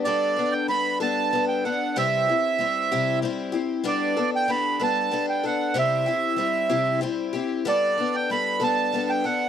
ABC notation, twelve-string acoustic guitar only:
X:1
M:6/8
L:1/8
Q:3/8=63
K:G
V:1 name="Twelve-string acoustic guitar"
[G,B,DA] [B,DA] [G,B,DA] [G,B,DA] [G,B,DA] [B,DA] | [C,G,CEG] [CEG] [G,CEG] [C,G,CEG] [G,CEG] [CEG] | [G,B,DA] [B,DA] [G,B,DA] [G,B,DA] [G,B,DA] [B,DA] | [C,G,CEG] [CEG] [G,CEG] [C,G,CEG] [G,CEG] [CEG] |
[G,B,DA] [B,DA] [G,B,DA] [G,B,DA] [G,B,DA] [B,DA] |]